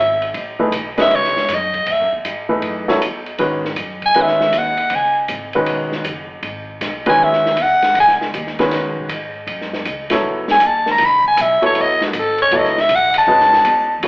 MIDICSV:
0, 0, Header, 1, 6, 480
1, 0, Start_track
1, 0, Tempo, 380469
1, 435, Time_signature, 4, 2, 24, 8
1, 17761, End_track
2, 0, Start_track
2, 0, Title_t, "Soprano saxophone"
2, 0, Program_c, 0, 64
2, 0, Note_on_c, 0, 76, 105
2, 405, Note_off_c, 0, 76, 0
2, 1275, Note_on_c, 0, 76, 95
2, 1455, Note_on_c, 0, 73, 87
2, 1474, Note_off_c, 0, 76, 0
2, 1948, Note_on_c, 0, 75, 91
2, 1967, Note_off_c, 0, 73, 0
2, 2419, Note_on_c, 0, 76, 91
2, 2438, Note_off_c, 0, 75, 0
2, 2707, Note_off_c, 0, 76, 0
2, 5118, Note_on_c, 0, 80, 96
2, 5317, Note_on_c, 0, 76, 83
2, 5336, Note_off_c, 0, 80, 0
2, 5780, Note_on_c, 0, 78, 80
2, 5799, Note_off_c, 0, 76, 0
2, 6247, Note_on_c, 0, 80, 90
2, 6266, Note_off_c, 0, 78, 0
2, 6540, Note_off_c, 0, 80, 0
2, 8942, Note_on_c, 0, 80, 93
2, 9127, Note_on_c, 0, 76, 92
2, 9145, Note_off_c, 0, 80, 0
2, 9610, Note_on_c, 0, 78, 89
2, 9629, Note_off_c, 0, 76, 0
2, 10061, Note_off_c, 0, 78, 0
2, 10093, Note_on_c, 0, 80, 95
2, 10266, Note_off_c, 0, 80, 0
2, 13261, Note_on_c, 0, 80, 97
2, 13453, Note_on_c, 0, 81, 85
2, 13472, Note_off_c, 0, 80, 0
2, 13740, Note_off_c, 0, 81, 0
2, 13767, Note_on_c, 0, 82, 103
2, 13946, Note_on_c, 0, 83, 116
2, 13965, Note_off_c, 0, 82, 0
2, 14217, Note_off_c, 0, 83, 0
2, 14224, Note_on_c, 0, 80, 94
2, 14397, Note_on_c, 0, 76, 93
2, 14416, Note_off_c, 0, 80, 0
2, 14692, Note_off_c, 0, 76, 0
2, 14705, Note_on_c, 0, 73, 90
2, 14903, Note_on_c, 0, 75, 99
2, 14922, Note_off_c, 0, 73, 0
2, 15185, Note_off_c, 0, 75, 0
2, 15205, Note_on_c, 0, 66, 51
2, 15378, Note_on_c, 0, 69, 88
2, 15397, Note_off_c, 0, 66, 0
2, 15659, Note_off_c, 0, 69, 0
2, 15666, Note_on_c, 0, 73, 102
2, 15850, Note_on_c, 0, 75, 92
2, 15869, Note_off_c, 0, 73, 0
2, 16156, Note_on_c, 0, 76, 96
2, 16175, Note_off_c, 0, 75, 0
2, 16339, Note_on_c, 0, 78, 94
2, 16358, Note_off_c, 0, 76, 0
2, 16619, Note_off_c, 0, 78, 0
2, 16626, Note_on_c, 0, 81, 114
2, 17679, Note_off_c, 0, 81, 0
2, 17761, End_track
3, 0, Start_track
3, 0, Title_t, "Upright piano"
3, 0, Program_c, 1, 0
3, 748, Note_on_c, 1, 52, 68
3, 752, Note_on_c, 1, 63, 60
3, 753, Note_on_c, 1, 57, 67
3, 753, Note_on_c, 1, 71, 70
3, 758, Note_on_c, 1, 68, 62
3, 897, Note_off_c, 1, 52, 0
3, 899, Note_off_c, 1, 57, 0
3, 899, Note_off_c, 1, 63, 0
3, 899, Note_off_c, 1, 71, 0
3, 902, Note_off_c, 1, 68, 0
3, 1230, Note_on_c, 1, 56, 62
3, 1232, Note_on_c, 1, 61, 60
3, 1238, Note_on_c, 1, 66, 58
3, 1238, Note_on_c, 1, 71, 62
3, 1241, Note_on_c, 1, 75, 73
3, 1842, Note_off_c, 1, 56, 0
3, 1843, Note_off_c, 1, 61, 0
3, 1846, Note_off_c, 1, 66, 0
3, 1846, Note_off_c, 1, 71, 0
3, 1848, Note_off_c, 1, 75, 0
3, 3140, Note_on_c, 1, 52, 64
3, 3141, Note_on_c, 1, 57, 54
3, 3143, Note_on_c, 1, 63, 59
3, 3146, Note_on_c, 1, 71, 68
3, 3147, Note_on_c, 1, 68, 57
3, 3596, Note_off_c, 1, 52, 0
3, 3597, Note_off_c, 1, 57, 0
3, 3598, Note_off_c, 1, 63, 0
3, 3599, Note_off_c, 1, 71, 0
3, 3600, Note_off_c, 1, 68, 0
3, 3634, Note_on_c, 1, 54, 74
3, 3635, Note_on_c, 1, 59, 72
3, 3637, Note_on_c, 1, 64, 73
3, 3644, Note_on_c, 1, 69, 70
3, 3645, Note_on_c, 1, 73, 83
3, 3781, Note_off_c, 1, 54, 0
3, 3781, Note_off_c, 1, 59, 0
3, 3782, Note_off_c, 1, 64, 0
3, 3786, Note_off_c, 1, 69, 0
3, 3786, Note_off_c, 1, 73, 0
3, 4280, Note_on_c, 1, 51, 63
3, 4280, Note_on_c, 1, 71, 74
3, 4281, Note_on_c, 1, 66, 60
3, 4284, Note_on_c, 1, 56, 59
3, 4285, Note_on_c, 1, 61, 58
3, 4565, Note_off_c, 1, 51, 0
3, 4565, Note_off_c, 1, 66, 0
3, 4565, Note_off_c, 1, 71, 0
3, 4567, Note_off_c, 1, 56, 0
3, 4568, Note_off_c, 1, 61, 0
3, 5242, Note_on_c, 1, 51, 59
3, 5242, Note_on_c, 1, 66, 58
3, 5243, Note_on_c, 1, 71, 69
3, 5244, Note_on_c, 1, 56, 60
3, 5245, Note_on_c, 1, 61, 60
3, 5974, Note_off_c, 1, 51, 0
3, 5974, Note_off_c, 1, 66, 0
3, 5974, Note_off_c, 1, 71, 0
3, 5975, Note_off_c, 1, 56, 0
3, 5975, Note_off_c, 1, 61, 0
3, 7003, Note_on_c, 1, 56, 64
3, 7004, Note_on_c, 1, 51, 67
3, 7005, Note_on_c, 1, 61, 63
3, 7005, Note_on_c, 1, 71, 74
3, 7013, Note_on_c, 1, 66, 68
3, 7607, Note_off_c, 1, 56, 0
3, 7608, Note_off_c, 1, 51, 0
3, 7608, Note_off_c, 1, 61, 0
3, 7608, Note_off_c, 1, 71, 0
3, 7612, Note_off_c, 1, 66, 0
3, 8907, Note_on_c, 1, 61, 66
3, 8910, Note_on_c, 1, 51, 72
3, 8910, Note_on_c, 1, 56, 68
3, 8913, Note_on_c, 1, 66, 66
3, 8918, Note_on_c, 1, 71, 74
3, 9518, Note_off_c, 1, 61, 0
3, 9520, Note_off_c, 1, 51, 0
3, 9520, Note_off_c, 1, 56, 0
3, 9521, Note_off_c, 1, 66, 0
3, 9524, Note_off_c, 1, 71, 0
3, 10838, Note_on_c, 1, 61, 63
3, 10839, Note_on_c, 1, 56, 59
3, 10840, Note_on_c, 1, 51, 68
3, 10841, Note_on_c, 1, 66, 59
3, 10844, Note_on_c, 1, 71, 78
3, 11443, Note_off_c, 1, 61, 0
3, 11444, Note_off_c, 1, 51, 0
3, 11444, Note_off_c, 1, 56, 0
3, 11445, Note_off_c, 1, 66, 0
3, 11446, Note_off_c, 1, 71, 0
3, 12756, Note_on_c, 1, 54, 70
3, 12757, Note_on_c, 1, 59, 67
3, 12758, Note_on_c, 1, 64, 62
3, 12762, Note_on_c, 1, 73, 76
3, 12763, Note_on_c, 1, 69, 65
3, 13362, Note_off_c, 1, 54, 0
3, 13363, Note_off_c, 1, 59, 0
3, 13363, Note_off_c, 1, 64, 0
3, 13365, Note_off_c, 1, 73, 0
3, 13366, Note_off_c, 1, 69, 0
3, 14656, Note_on_c, 1, 59, 68
3, 14660, Note_on_c, 1, 54, 74
3, 14661, Note_on_c, 1, 64, 66
3, 14663, Note_on_c, 1, 69, 69
3, 14665, Note_on_c, 1, 73, 83
3, 15272, Note_off_c, 1, 59, 0
3, 15274, Note_off_c, 1, 54, 0
3, 15275, Note_off_c, 1, 64, 0
3, 15276, Note_off_c, 1, 69, 0
3, 15276, Note_off_c, 1, 73, 0
3, 15799, Note_on_c, 1, 54, 71
3, 15800, Note_on_c, 1, 64, 65
3, 15807, Note_on_c, 1, 59, 65
3, 15807, Note_on_c, 1, 73, 77
3, 15808, Note_on_c, 1, 69, 68
3, 16081, Note_off_c, 1, 54, 0
3, 16082, Note_off_c, 1, 64, 0
3, 16085, Note_off_c, 1, 59, 0
3, 16085, Note_off_c, 1, 73, 0
3, 16086, Note_off_c, 1, 69, 0
3, 16745, Note_on_c, 1, 61, 55
3, 16750, Note_on_c, 1, 66, 57
3, 16751, Note_on_c, 1, 56, 58
3, 16751, Note_on_c, 1, 75, 70
3, 16754, Note_on_c, 1, 71, 57
3, 17483, Note_off_c, 1, 61, 0
3, 17485, Note_off_c, 1, 66, 0
3, 17486, Note_off_c, 1, 56, 0
3, 17486, Note_off_c, 1, 75, 0
3, 17487, Note_off_c, 1, 71, 0
3, 17700, Note_on_c, 1, 54, 59
3, 17706, Note_on_c, 1, 64, 51
3, 17707, Note_on_c, 1, 59, 57
3, 17710, Note_on_c, 1, 73, 69
3, 17713, Note_on_c, 1, 69, 52
3, 17761, Note_off_c, 1, 54, 0
3, 17761, Note_off_c, 1, 59, 0
3, 17761, Note_off_c, 1, 64, 0
3, 17761, Note_off_c, 1, 69, 0
3, 17761, Note_off_c, 1, 73, 0
3, 17761, End_track
4, 0, Start_track
4, 0, Title_t, "Upright bass"
4, 0, Program_c, 2, 32
4, 0, Note_on_c, 2, 32, 93
4, 418, Note_off_c, 2, 32, 0
4, 430, Note_on_c, 2, 33, 84
4, 899, Note_off_c, 2, 33, 0
4, 906, Note_on_c, 2, 35, 83
4, 1377, Note_off_c, 2, 35, 0
4, 1392, Note_on_c, 2, 37, 83
4, 1690, Note_off_c, 2, 37, 0
4, 1873, Note_on_c, 2, 42, 89
4, 2336, Note_off_c, 2, 42, 0
4, 2344, Note_on_c, 2, 45, 89
4, 2516, Note_off_c, 2, 45, 0
4, 2516, Note_on_c, 2, 42, 59
4, 2672, Note_off_c, 2, 42, 0
4, 2679, Note_on_c, 2, 40, 66
4, 2827, Note_off_c, 2, 40, 0
4, 2837, Note_on_c, 2, 44, 82
4, 3303, Note_off_c, 2, 44, 0
4, 3308, Note_on_c, 2, 42, 73
4, 3779, Note_off_c, 2, 42, 0
4, 3799, Note_on_c, 2, 40, 82
4, 4264, Note_off_c, 2, 40, 0
4, 4274, Note_on_c, 2, 44, 83
4, 4741, Note_off_c, 2, 44, 0
4, 4749, Note_on_c, 2, 42, 83
4, 5219, Note_off_c, 2, 42, 0
4, 5238, Note_on_c, 2, 40, 77
4, 5703, Note_off_c, 2, 40, 0
4, 5710, Note_on_c, 2, 39, 86
4, 6179, Note_off_c, 2, 39, 0
4, 6193, Note_on_c, 2, 37, 80
4, 6660, Note_off_c, 2, 37, 0
4, 6670, Note_on_c, 2, 32, 88
4, 7138, Note_off_c, 2, 32, 0
4, 7155, Note_on_c, 2, 28, 75
4, 7621, Note_off_c, 2, 28, 0
4, 7639, Note_on_c, 2, 30, 89
4, 8099, Note_off_c, 2, 30, 0
4, 8106, Note_on_c, 2, 32, 88
4, 8575, Note_off_c, 2, 32, 0
4, 8589, Note_on_c, 2, 35, 86
4, 9057, Note_off_c, 2, 35, 0
4, 9066, Note_on_c, 2, 40, 76
4, 9535, Note_off_c, 2, 40, 0
4, 9542, Note_on_c, 2, 40, 87
4, 10013, Note_off_c, 2, 40, 0
4, 10019, Note_on_c, 2, 37, 89
4, 10491, Note_off_c, 2, 37, 0
4, 10517, Note_on_c, 2, 39, 87
4, 10980, Note_off_c, 2, 39, 0
4, 11002, Note_on_c, 2, 40, 74
4, 11151, Note_off_c, 2, 40, 0
4, 11151, Note_on_c, 2, 37, 54
4, 11301, Note_off_c, 2, 37, 0
4, 11308, Note_on_c, 2, 35, 62
4, 11459, Note_off_c, 2, 35, 0
4, 11464, Note_on_c, 2, 44, 87
4, 11933, Note_off_c, 2, 44, 0
4, 11944, Note_on_c, 2, 42, 82
4, 12413, Note_off_c, 2, 42, 0
4, 12432, Note_on_c, 2, 37, 85
4, 12897, Note_off_c, 2, 37, 0
4, 12905, Note_on_c, 2, 40, 79
4, 13204, Note_off_c, 2, 40, 0
4, 13385, Note_on_c, 2, 39, 90
4, 13850, Note_off_c, 2, 39, 0
4, 13858, Note_on_c, 2, 37, 82
4, 14330, Note_off_c, 2, 37, 0
4, 14338, Note_on_c, 2, 35, 89
4, 14640, Note_off_c, 2, 35, 0
4, 14826, Note_on_c, 2, 33, 78
4, 15294, Note_off_c, 2, 33, 0
4, 15307, Note_on_c, 2, 32, 92
4, 15775, Note_off_c, 2, 32, 0
4, 15784, Note_on_c, 2, 37, 83
4, 16253, Note_off_c, 2, 37, 0
4, 16260, Note_on_c, 2, 35, 82
4, 16731, Note_off_c, 2, 35, 0
4, 16740, Note_on_c, 2, 37, 78
4, 17041, Note_off_c, 2, 37, 0
4, 17217, Note_on_c, 2, 40, 99
4, 17690, Note_off_c, 2, 40, 0
4, 17699, Note_on_c, 2, 42, 91
4, 17761, Note_off_c, 2, 42, 0
4, 17761, End_track
5, 0, Start_track
5, 0, Title_t, "Muted upright bass strokes"
5, 1716, Note_on_c, 9, 29, 36
5, 1842, Note_off_c, 9, 29, 0
5, 13219, Note_on_c, 9, 29, 37
5, 13345, Note_off_c, 9, 29, 0
5, 14668, Note_on_c, 9, 29, 43
5, 14794, Note_off_c, 9, 29, 0
5, 17054, Note_on_c, 9, 29, 39
5, 17180, Note_off_c, 9, 29, 0
5, 17761, End_track
6, 0, Start_track
6, 0, Title_t, "Drums"
6, 275, Note_on_c, 9, 51, 48
6, 401, Note_off_c, 9, 51, 0
6, 431, Note_on_c, 9, 51, 64
6, 558, Note_off_c, 9, 51, 0
6, 911, Note_on_c, 9, 44, 55
6, 911, Note_on_c, 9, 51, 77
6, 1037, Note_off_c, 9, 44, 0
6, 1037, Note_off_c, 9, 51, 0
6, 1231, Note_on_c, 9, 51, 49
6, 1238, Note_on_c, 9, 38, 61
6, 1357, Note_off_c, 9, 51, 0
6, 1364, Note_off_c, 9, 38, 0
6, 1400, Note_on_c, 9, 51, 58
6, 1526, Note_off_c, 9, 51, 0
6, 1566, Note_on_c, 9, 38, 28
6, 1692, Note_off_c, 9, 38, 0
6, 1722, Note_on_c, 9, 38, 43
6, 1848, Note_off_c, 9, 38, 0
6, 1873, Note_on_c, 9, 44, 50
6, 1873, Note_on_c, 9, 51, 63
6, 1879, Note_on_c, 9, 38, 36
6, 1999, Note_off_c, 9, 44, 0
6, 1999, Note_off_c, 9, 51, 0
6, 2005, Note_off_c, 9, 38, 0
6, 2194, Note_on_c, 9, 51, 47
6, 2198, Note_on_c, 9, 36, 54
6, 2320, Note_off_c, 9, 51, 0
6, 2324, Note_off_c, 9, 36, 0
6, 2352, Note_on_c, 9, 51, 67
6, 2478, Note_off_c, 9, 51, 0
6, 2835, Note_on_c, 9, 44, 61
6, 2835, Note_on_c, 9, 51, 74
6, 2961, Note_off_c, 9, 44, 0
6, 2961, Note_off_c, 9, 51, 0
6, 3306, Note_on_c, 9, 51, 60
6, 3432, Note_off_c, 9, 51, 0
6, 3637, Note_on_c, 9, 38, 57
6, 3763, Note_off_c, 9, 38, 0
6, 3806, Note_on_c, 9, 44, 57
6, 3806, Note_on_c, 9, 51, 71
6, 3932, Note_off_c, 9, 44, 0
6, 3932, Note_off_c, 9, 51, 0
6, 4115, Note_on_c, 9, 51, 45
6, 4242, Note_off_c, 9, 51, 0
6, 4270, Note_on_c, 9, 51, 60
6, 4396, Note_off_c, 9, 51, 0
6, 4601, Note_on_c, 9, 38, 39
6, 4727, Note_off_c, 9, 38, 0
6, 4746, Note_on_c, 9, 44, 63
6, 4746, Note_on_c, 9, 51, 67
6, 4872, Note_off_c, 9, 44, 0
6, 4872, Note_off_c, 9, 51, 0
6, 5072, Note_on_c, 9, 51, 47
6, 5075, Note_on_c, 9, 36, 50
6, 5198, Note_off_c, 9, 51, 0
6, 5201, Note_off_c, 9, 36, 0
6, 5228, Note_on_c, 9, 51, 60
6, 5354, Note_off_c, 9, 51, 0
6, 5393, Note_on_c, 9, 38, 28
6, 5519, Note_off_c, 9, 38, 0
6, 5559, Note_on_c, 9, 38, 42
6, 5685, Note_off_c, 9, 38, 0
6, 5710, Note_on_c, 9, 44, 52
6, 5710, Note_on_c, 9, 51, 67
6, 5836, Note_off_c, 9, 44, 0
6, 5836, Note_off_c, 9, 51, 0
6, 6022, Note_on_c, 9, 51, 47
6, 6149, Note_off_c, 9, 51, 0
6, 6179, Note_on_c, 9, 51, 66
6, 6306, Note_off_c, 9, 51, 0
6, 6665, Note_on_c, 9, 44, 62
6, 6665, Note_on_c, 9, 51, 66
6, 6791, Note_off_c, 9, 44, 0
6, 6791, Note_off_c, 9, 51, 0
6, 6978, Note_on_c, 9, 51, 45
6, 7104, Note_off_c, 9, 51, 0
6, 7144, Note_on_c, 9, 51, 63
6, 7271, Note_off_c, 9, 51, 0
6, 7468, Note_on_c, 9, 38, 35
6, 7594, Note_off_c, 9, 38, 0
6, 7625, Note_on_c, 9, 44, 63
6, 7625, Note_on_c, 9, 51, 65
6, 7752, Note_off_c, 9, 44, 0
6, 7752, Note_off_c, 9, 51, 0
6, 8107, Note_on_c, 9, 51, 62
6, 8234, Note_off_c, 9, 51, 0
6, 8592, Note_on_c, 9, 44, 57
6, 8592, Note_on_c, 9, 51, 73
6, 8598, Note_on_c, 9, 38, 40
6, 8718, Note_off_c, 9, 44, 0
6, 8718, Note_off_c, 9, 51, 0
6, 8724, Note_off_c, 9, 38, 0
6, 8907, Note_on_c, 9, 51, 71
6, 8912, Note_on_c, 9, 36, 59
6, 9033, Note_off_c, 9, 51, 0
6, 9038, Note_off_c, 9, 36, 0
6, 9242, Note_on_c, 9, 38, 28
6, 9368, Note_off_c, 9, 38, 0
6, 9407, Note_on_c, 9, 38, 44
6, 9533, Note_off_c, 9, 38, 0
6, 9547, Note_on_c, 9, 44, 55
6, 9547, Note_on_c, 9, 51, 64
6, 9673, Note_off_c, 9, 44, 0
6, 9673, Note_off_c, 9, 51, 0
6, 9868, Note_on_c, 9, 51, 44
6, 9875, Note_on_c, 9, 38, 41
6, 9994, Note_off_c, 9, 51, 0
6, 10001, Note_off_c, 9, 38, 0
6, 10030, Note_on_c, 9, 51, 71
6, 10156, Note_off_c, 9, 51, 0
6, 10193, Note_on_c, 9, 38, 31
6, 10320, Note_off_c, 9, 38, 0
6, 10362, Note_on_c, 9, 38, 40
6, 10488, Note_off_c, 9, 38, 0
6, 10519, Note_on_c, 9, 44, 73
6, 10519, Note_on_c, 9, 51, 68
6, 10645, Note_off_c, 9, 44, 0
6, 10645, Note_off_c, 9, 51, 0
6, 10682, Note_on_c, 9, 38, 27
6, 10808, Note_off_c, 9, 38, 0
6, 10834, Note_on_c, 9, 51, 47
6, 10846, Note_on_c, 9, 38, 45
6, 10960, Note_off_c, 9, 51, 0
6, 10972, Note_off_c, 9, 38, 0
6, 10992, Note_on_c, 9, 51, 64
6, 10998, Note_on_c, 9, 38, 37
6, 11118, Note_off_c, 9, 51, 0
6, 11124, Note_off_c, 9, 38, 0
6, 11314, Note_on_c, 9, 36, 53
6, 11441, Note_off_c, 9, 36, 0
6, 11472, Note_on_c, 9, 44, 58
6, 11472, Note_on_c, 9, 51, 73
6, 11598, Note_off_c, 9, 44, 0
6, 11598, Note_off_c, 9, 51, 0
6, 11952, Note_on_c, 9, 51, 65
6, 12078, Note_off_c, 9, 51, 0
6, 12127, Note_on_c, 9, 38, 28
6, 12254, Note_off_c, 9, 38, 0
6, 12279, Note_on_c, 9, 38, 44
6, 12406, Note_off_c, 9, 38, 0
6, 12430, Note_on_c, 9, 44, 58
6, 12430, Note_on_c, 9, 51, 70
6, 12556, Note_off_c, 9, 44, 0
6, 12556, Note_off_c, 9, 51, 0
6, 12739, Note_on_c, 9, 51, 73
6, 12746, Note_on_c, 9, 38, 53
6, 12866, Note_off_c, 9, 51, 0
6, 12872, Note_off_c, 9, 38, 0
6, 13221, Note_on_c, 9, 38, 56
6, 13347, Note_off_c, 9, 38, 0
6, 13373, Note_on_c, 9, 44, 64
6, 13373, Note_on_c, 9, 51, 68
6, 13499, Note_off_c, 9, 44, 0
6, 13499, Note_off_c, 9, 51, 0
6, 13703, Note_on_c, 9, 38, 47
6, 13830, Note_off_c, 9, 38, 0
6, 13854, Note_on_c, 9, 51, 66
6, 13860, Note_on_c, 9, 38, 39
6, 13980, Note_off_c, 9, 51, 0
6, 13986, Note_off_c, 9, 38, 0
6, 14184, Note_on_c, 9, 36, 53
6, 14310, Note_off_c, 9, 36, 0
6, 14348, Note_on_c, 9, 44, 69
6, 14348, Note_on_c, 9, 51, 76
6, 14474, Note_off_c, 9, 44, 0
6, 14474, Note_off_c, 9, 51, 0
6, 14666, Note_on_c, 9, 51, 47
6, 14793, Note_off_c, 9, 51, 0
6, 14824, Note_on_c, 9, 51, 61
6, 14950, Note_off_c, 9, 51, 0
6, 15153, Note_on_c, 9, 38, 50
6, 15279, Note_off_c, 9, 38, 0
6, 15306, Note_on_c, 9, 44, 56
6, 15306, Note_on_c, 9, 51, 72
6, 15433, Note_off_c, 9, 44, 0
6, 15433, Note_off_c, 9, 51, 0
6, 15621, Note_on_c, 9, 51, 49
6, 15747, Note_off_c, 9, 51, 0
6, 15788, Note_on_c, 9, 51, 64
6, 15914, Note_off_c, 9, 51, 0
6, 15952, Note_on_c, 9, 38, 29
6, 16078, Note_off_c, 9, 38, 0
6, 16116, Note_on_c, 9, 38, 45
6, 16242, Note_off_c, 9, 38, 0
6, 16261, Note_on_c, 9, 44, 57
6, 16261, Note_on_c, 9, 51, 72
6, 16387, Note_off_c, 9, 44, 0
6, 16387, Note_off_c, 9, 51, 0
6, 16576, Note_on_c, 9, 51, 73
6, 16702, Note_off_c, 9, 51, 0
6, 16909, Note_on_c, 9, 38, 32
6, 17035, Note_off_c, 9, 38, 0
6, 17070, Note_on_c, 9, 38, 45
6, 17196, Note_off_c, 9, 38, 0
6, 17216, Note_on_c, 9, 44, 61
6, 17216, Note_on_c, 9, 51, 66
6, 17342, Note_off_c, 9, 44, 0
6, 17342, Note_off_c, 9, 51, 0
6, 17696, Note_on_c, 9, 51, 79
6, 17761, Note_off_c, 9, 51, 0
6, 17761, End_track
0, 0, End_of_file